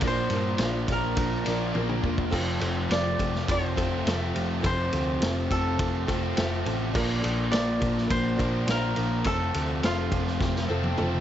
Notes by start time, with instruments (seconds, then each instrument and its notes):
Already playing: overdriven electric guitar F3 A#3 D4
0.00 picked electric bass A#1, overdriven electric guitar A#2 F3 A#3, tonewheel organ A#3 D4 F4, honky-tonk piano D4 F4, kick, ride
0.05 overdriven electric guitar D4, honky-tonk piano A#4, koto C5
0.30 picked electric bass G2, overdriven electric guitar A#2, honky-tonk piano D4 F4 A#4, ride
0.57 picked electric bass A#1, overdriven electric guitar F3, honky-tonk piano D4 F4, snare, ride
0.62 honky-tonk piano A#4
0.87 picked electric bass A#1, overdriven electric guitar A#2, honky-tonk piano D4 F4 A#4, kick, ride
0.92 koto A#4
1.15 picked electric bass A#1, overdriven electric guitar F3, honky-tonk piano D4 F4, kick, ride
1.19 honky-tonk piano A#4
1.44 picked electric bass A#1, overdriven electric guitar A#2 F3 A#3 D4, honky-tonk piano D4 F4, ride
1.48 honky-tonk piano A#4
1.73 picked electric bass A#1, overdriven electric guitar A#2 F3 A#3 D4, honky-tonk piano D4 F4, high tom
1.77 honky-tonk piano A#4
1.89 mid tom
2.01 picked electric bass E1, overdriven electric guitar A#2, honky-tonk piano D4 F4 A#4, kick
2.18 kick
2.30 picked electric bass F1, overdriven electric guitar F2 C3, tonewheel organ A3 C4 F4 A4, honky-tonk piano C4 F4 A4, kick, crash
2.34 overdriven electric guitar F3 A3 C4
2.59 picked electric bass F1, overdriven electric guitar C3, honky-tonk piano C4 F4 A4, ride
2.88 picked electric bass F1, overdriven electric guitar F3, honky-tonk piano C4 F4 A4, koto D5, snare, ride
3.19 picked electric bass F1, overdriven electric guitar C3, honky-tonk piano C4 F4 A4, kick, ride
3.35 snare
3.46 picked electric bass F1, overdriven electric guitar F3, honky-tonk piano C4 F4 A4, kick, ride
3.51 koto C5
3.76 picked electric bass F1, overdriven electric guitar F2 C3 F3 A3 C4, honky-tonk piano C4 F4 A4, kick, ride
4.05 picked electric bass F1, overdriven electric guitar F2 C3 F3 A3 C4, honky-tonk piano C4 F4 A4, snare, ride
4.33 picked electric bass F1, overdriven electric guitar C3, honky-tonk piano C4 F4 G4, ride
4.61 picked electric bass F1, overdriven electric guitar F2 C3 F3 A3, honky-tonk piano C4 F4 A4, kick, ride
4.65 distorted electric guitar F3, tonewheel organ A3 C4 F4, overdriven electric guitar C4, koto C5
4.91 picked electric bass D2, overdriven electric guitar C3, honky-tonk piano C4 F4 A4, ride
5.19 picked electric bass F1, overdriven electric guitar F3, honky-tonk piano C4 F4 A4, snare, ride
5.49 picked electric bass F1, overdriven electric guitar C3, honky-tonk piano C4 F4 A4, koto A4, kick, ride
5.77 picked electric bass F1, overdriven electric guitar F3, honky-tonk piano C4 F4 A4, kick, ride
6.06 picked electric bass F1, overdriven electric guitar C3 F3 A3 C4, honky-tonk piano C4 F4 A4, kick, ride
6.10 overdriven electric guitar F2
6.36 picked electric bass F1, overdriven electric guitar F2 C3 F3 A3, honky-tonk piano C4 F4 A4, snare, ride
6.40 overdriven electric guitar C4
6.65 picked electric bass A1, overdriven electric guitar C3, honky-tonk piano C4 F4 A4, ride
6.93 picked electric bass A#1, overdriven electric guitar A#2 F3 A#3, tonewheel organ A#3 D4 F4 A#4, honky-tonk piano D4 F4 A#4, kick, crash
6.98 overdriven electric guitar D4
7.20 overdriven electric guitar A#2, honky-tonk piano D4 F4 A4
7.24 picked electric bass A#1, ride
7.51 picked electric bass A#1, overdriven electric guitar F3, honky-tonk piano D4 F4 A4, koto D5, snare, ride
7.79 picked electric bass A#1, overdriven electric guitar A#2, honky-tonk piano D4 F4 A#4, kick, ride
7.97 snare
8.06 overdriven electric guitar F3, honky-tonk piano D4 F4 A#4, ride
8.10 picked electric bass A#1, koto C5, kick
8.36 picked electric bass A#1, honky-tonk piano D4 F4 A#4, overdriven electric guitar D4, kick, ride
8.40 overdriven electric guitar A#2 F3 A#3
8.66 picked electric bass A#1, overdriven electric guitar A#2 F3 A#3, honky-tonk piano D4 F4 A#4, snare, ride
8.71 overdriven electric guitar D4, koto A#4
8.95 picked electric bass A#1, overdriven electric guitar A#2, honky-tonk piano D4 F4 A#4, ride
9.23 picked electric bass F1, overdriven electric guitar F2 C3 F3 A3, tonewheel organ A3 C4 F4 A4, honky-tonk piano C4 F4 A4, koto A4, kick, ride
9.28 overdriven electric guitar C4
9.53 picked electric bass D2, overdriven electric guitar C3, honky-tonk piano C4 F4 A4, ride
9.81 picked electric bass F1, overdriven electric guitar F3, honky-tonk piano C4 F4 A4, koto F4, snare, ride
10.10 picked electric bass F1, overdriven electric guitar C3, honky-tonk piano C4 F4 A4, kick, ride
10.27 snare
10.39 picked electric bass F1, overdriven electric guitar F3, honky-tonk piano C4 F4 G4, kick, snare
10.56 snare
10.68 picked electric bass F1, overdriven electric guitar F2 C3 F3 A3 C4, honky-tonk piano C4 F4 A4
10.84 high tom
10.97 picked electric bass F1, overdriven electric guitar F2 C3 F3 A3 C4, honky-tonk piano C4 F4 A4, mid tom